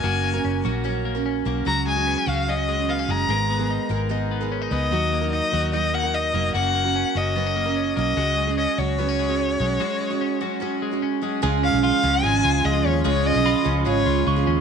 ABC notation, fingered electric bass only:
X:1
M:4/4
L:1/16
Q:1/4=148
K:C#mix
V:1 name="Fingered electric bass" clef=bass
F,,,4 F,,,2 A,,,8 B,,,2 | C,,4- C,, z C,,8 F,,,2 | G,,,4- G,,, z G,,,8 C,,2 | D,,4- D,, z D,,8 E,,,2 |
F,,,4- F,,, z F,,,8 B,,,2 | C,,4- C,, z C,,8 B,,,2 | z16 | C,,3 B,,,2 z C,,2 G,,,2 C,,2 C,,2 D,,2 |
C,,3 B,,,2 z C,,2 G,,,2 C,,2 C,,2 D,,2 |]